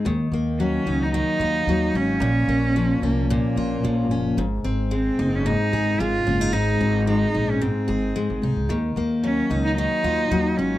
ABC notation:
X:1
M:4/4
L:1/16
Q:"Swing 16ths" 1/4=111
K:Ebdor
V:1 name="Cello"
z4 D3 E E6 D2- | D6 B,2 B,6 z2 | z4 C3 D E4 F4 | E4 E3 D C6 z2 |
z4 D3 E E6 D2 |]
V:2 name="Steel-string acoustic guitar"
E,2 B,2 G,2 E2 E,2 F2 G,2 E2 | B,,2 B,2 F,2 D2 B,,2 F2 F,2 D2 | A,,2 C2 A,2 E2 A,,2 A2 A,2 D E | A,,2 C2 A,2 E2 A,,2 A2 A,2 E2 |
E,2 B,2 G,2 E2 E,2 F2 G,2 E2 |]
V:3 name="Upright bass" clef=bass
E,,2 E,,4 D,,3 z E,,2 E,,2 A,,,2 | B,,,2 B,,,4 C,,3 z B,,,2 B,,,2 G,,,2 | A,,,2 A,,,4 G,,,3 z A,,,2 A,,,2 G,,,2 | A,,,2 A,,,4 B,,,3 z A,,,2 z A,,, C,, D,, |
E,,2 E,,4 D,,3 z E,,2 E,,2 A,,,2 |]